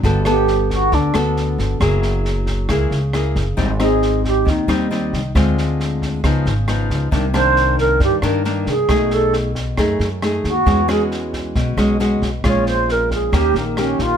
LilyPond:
<<
  \new Staff \with { instrumentName = "Alto flute" } { \time 4/4 \key g \phrygian \tempo 4 = 135 r8 g'4 fis'8 d'8 r4. | r1 | r8 aes'4 g'8 ees'8 r4. | r1 |
r8 c''4 bes'8 g'8 r4 aes'8~ | aes'8 a'8 r2 r8 fis'8~ | fis'8 gis'8 r2. | des''8 c''8 bes'8 aes'8 g'8 bes8 des'8 f'8 | }
  \new Staff \with { instrumentName = "Nylon-string guitar" } { \time 4/4 \key g \phrygian << { <b fis' a'>8 <b a'>2 <b fis' a'>4. | <bes fes' aes'>2 <bes fes' aes'>8 r8 <bes fes' aes'>8 r8 | <g c' ees'>8 <c' ees'>2 <g c' ees'>8 <g c' ees'>8 r8 | <aes c' f'>2 <f ces' ees'>8 r8 <f ces' ees'>4 |
<ees bes d'>8 <ees bes d'>2 <ees bes d'>8 <ees bes d'>8 r8 | <a dis' gis'>4. r8 <a dis' gis'>8 r8 <a dis' gis'>8 r8 | <gis cis' fis'>8 <gis cis' fis'>2 <gis cis' fis'>8 <gis cis' fis'>8 r8 | <aes des' f'>2 <bes des' g'>8 r8 <bes des' g'>4 | } \\ { g2 d2 | ges2 des2 | aes,2 ees2 | d2 des2 |
c2 g,2 | b,2 fis,2 | e2 b,2 | bes,2 ees2 | } >> }
  \new Staff \with { instrumentName = "Upright bass" } { \clef bass \time 4/4 \key g \phrygian g,,2 d,8 d,4 g,,8 | ges,,2 des,8 des,4 ges,,8 | aes,,2 ees,8 ees,4 c,8 | d,2 des,8 aes,,4 des,8 |
c,2 g,8 g,4 c,8 | b,,2 fis,8 fis,4 dis,8 | e,2 b,,8 b,,4 b,,8 | bes,,2 ees,8 bes,,4 bes,,8 | }
  \new DrumStaff \with { instrumentName = "Drums" } \drummode { \time 4/4 <bd sn>8 <ss sn>8 sn8 <bd sn>8 <bd sn>8 <ss sn>8 sn8 <bd sn>8 | <bd ss sn>8 sn8 sn8 <bd sn>8 <bd ss sn>8 sn8 <ss sn>8 <bd sn>8 | <bd sn>8 <ss sn>8 sn8 <bd sn>8 <bd sn>8 <ss sn>8 sn8 <bd sn>8 | <bd ss sn>8 sn8 sn8 <bd sn>8 <bd ss sn>8 sn8 <ss sn>8 <bd sn>8 |
<bd sn>8 <ss sn>8 sn8 <bd sn>8 <bd sn>8 <ss sn>8 sn8 <bd sn>8 | <bd ss sn>8 sn8 sn8 <bd sn>8 <bd ss sn>8 sn8 <ss sn>8 <bd sn>8 | <bd sn>8 <ss sn>8 sn8 <bd sn>8 <bd sn>8 <ss sn>8 sn8 <bd sn>8 | <bd ss sn>8 sn8 sn8 <bd sn>8 <bd ss sn>8 sn8 <ss sn>8 <bd sn>8 | }
>>